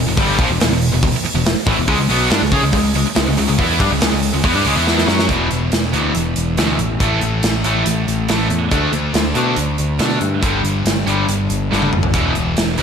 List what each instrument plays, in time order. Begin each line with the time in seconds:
0.06 picked electric bass E1, overdriven electric guitar E2 B2
0.16 picked electric bass G1, overdriven electric guitar G2 D3 G3, kick, open hi-hat
0.39 picked electric bass A#1, overdriven electric guitar A#2 F3, kick
0.49 picked electric bass E1, overdriven electric guitar E2 B2
0.59 picked electric bass E1, overdriven electric guitar E2 B2, snare, open hi-hat
0.71 picked electric bass E1, overdriven electric guitar E2 B2
0.81 open hi-hat
0.92 picked electric bass E1, overdriven electric guitar E2 B2
1.03 picked electric bass E1, overdriven electric guitar E2 B2, kick, open hi-hat
1.14 muted overdriven electric guitar stroke, muted picked electric bass stroke, muted distorted electric guitar stroke
1.24 muted overdriven electric guitar stroke, muted picked electric bass stroke, muted distorted electric guitar stroke, open hi-hat
1.34 picked electric bass E1, overdriven electric guitar E2 B2
1.45 snare, open hi-hat
1.66 picked electric bass A1, overdriven electric guitar A2 E3, kick, open hi-hat
1.77 picked electric bass E1, overdriven electric guitar E2 B2
1.88 picked electric bass C#2, overdriven electric guitar C#3 G#3, kick, open hi-hat
1.98 picked electric bass C#2, overdriven electric guitar C#3 G#3
2.09 picked electric bass B1, overdriven electric guitar B2 F#3 B3, open hi-hat
2.30 picked electric bass G2, overdriven electric guitar G3 D4, snare, open hi-hat
2.41 picked electric bass C#2, overdriven electric guitar C#3 G#3
2.51 picked electric bass C#3, overdriven electric guitar C#4 G#4, kick, open hi-hat
2.63 picked electric bass C#2, overdriven electric guitar C#3 G#3
2.73 picked electric bass C#2, overdriven electric guitar C#3 G#3, kick, open hi-hat
2.94 picked electric bass C#2, overdriven electric guitar C#3 G#3, open hi-hat
3.06 muted overdriven electric guitar stroke, muted picked electric bass stroke, muted distorted electric guitar stroke
3.15 picked electric bass C#2, overdriven electric guitar C#3 G#3, snare, open hi-hat
3.26 picked electric bass C#2, overdriven electric guitar C#3 G#3
3.37 picked electric bass C#2, overdriven electric guitar C#3 G#3, open hi-hat
3.48 picked electric bass C#2, overdriven electric guitar C#3 G#3
3.58 picked electric bass E2, overdriven electric guitar E3 B3 E4, kick, open hi-hat
3.80 picked electric bass G2, overdriven electric guitar G3 D4, kick, open hi-hat
3.90 picked electric bass C#2, overdriven electric guitar C#3 G#3
4.00 picked electric bass C#2, overdriven electric guitar C#3 G#3, snare, open hi-hat
4.11 picked electric bass C#2, overdriven electric guitar C#3 G#3
4.23 open hi-hat
4.33 picked electric bass C#2, overdriven electric guitar C#3 G#3
4.43 picked electric bass E2, overdriven electric guitar E3 B3, kick, open hi-hat
4.54 picked electric bass G2, overdriven electric guitar G3 D4
4.65 picked electric bass C#2, overdriven electric guitar C#3 G#3, open hi-hat
4.75 picked electric bass E2, overdriven electric guitar E3 B3 E4
4.87 snare
4.98 snare
5.07 picked electric bass F#2, overdriven electric guitar F#3 C#4 F#4, snare
5.19 snare
5.29 picked electric bass E1, overdriven electric guitar E2 B2 E3, kick, closed hi-hat
5.51 picked electric bass E1, closed hi-hat
5.72 picked electric bass E1, snare, closed hi-hat
5.94 picked electric bass D2, overdriven electric guitar E2 B2 E3, closed hi-hat
6.15 picked electric bass E1, closed hi-hat
6.36 picked electric bass E1, closed hi-hat
6.57 picked electric bass D2, overdriven electric guitar E2 B2 E3, snare, closed hi-hat
6.79 picked electric bass A1, closed hi-hat
7.00 picked electric bass A1, overdriven electric guitar A2 E3 A3, kick, closed hi-hat
7.21 picked electric bass A1, closed hi-hat
7.43 picked electric bass A1, snare, closed hi-hat
7.64 picked electric bass A1, overdriven electric guitar A2 E3 A3, closed hi-hat
7.86 picked electric bass A1, closed hi-hat
8.07 picked electric bass A1, closed hi-hat
8.29 picked electric bass A1, overdriven electric guitar A2 E3 A3, snare, closed hi-hat
8.50 picked electric bass E2, closed hi-hat
8.71 picked electric bass D2, overdriven electric guitar D3 A3 D4, kick, closed hi-hat
8.92 picked electric bass D2, closed hi-hat
9.14 picked electric bass D2, snare, closed hi-hat
9.35 picked electric bass B2, overdriven electric guitar D3 A3 D4, closed hi-hat
9.56 picked electric bass D2, closed hi-hat
9.78 picked electric bass D2, closed hi-hat
9.99 picked electric bass B2, overdriven electric guitar D3 A3 D4, snare, closed hi-hat
10.21 picked electric bass G2, closed hi-hat
10.42 picked electric bass G1, overdriven electric guitar G2 D3 G3, kick, closed hi-hat
10.64 picked electric bass G1, closed hi-hat
10.85 picked electric bass G1, snare, closed hi-hat
11.06 picked electric bass G1, overdriven electric guitar G2 D3 G3, closed hi-hat
11.27 picked electric bass G1, closed hi-hat
11.50 picked electric bass G1, closed hi-hat
11.72 picked electric bass G1, overdriven electric guitar G2 D3 G3, snare
11.82 high tom
11.93 picked electric bass G1, mid tom
12.03 floor tom
12.14 picked electric bass E1, overdriven electric guitar E2 B2 E3, kick, closed hi-hat
12.35 picked electric bass E1, closed hi-hat
12.57 picked electric bass E1, snare, closed hi-hat
12.78 picked electric bass D2, overdriven electric guitar E2 B2 E3, closed hi-hat